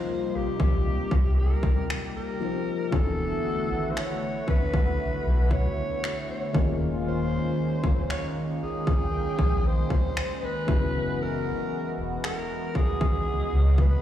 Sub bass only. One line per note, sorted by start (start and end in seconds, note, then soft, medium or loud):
0.34 0.44 A#1 soft
0.60 0.80 A#1 medium
0.86 0.96 C2 soft
1.11 1.53 C2 medium
2.93 3.34 E1 loud
3.70 3.91 G#1 medium
4.48 4.58 A1 soft
4.74 4.94 A1 medium
5.00 5.10 B1 soft
5.26 5.67 B1 medium
6.55 7.37 D#1 medium
7.84 8.04 F1 medium
8.62 8.72 G#1 soft
8.87 9.08 G#1 medium
9.13 9.24 A#1 soft
9.39 9.80 A#1 medium
10.68 11.51 F#1 loud
11.98 12.18 E1 medium
12.75 12.86 G#1 soft
13.01 13.22 G#1 medium
13.27 13.37 C#2 soft
13.53 13.94 C#2 medium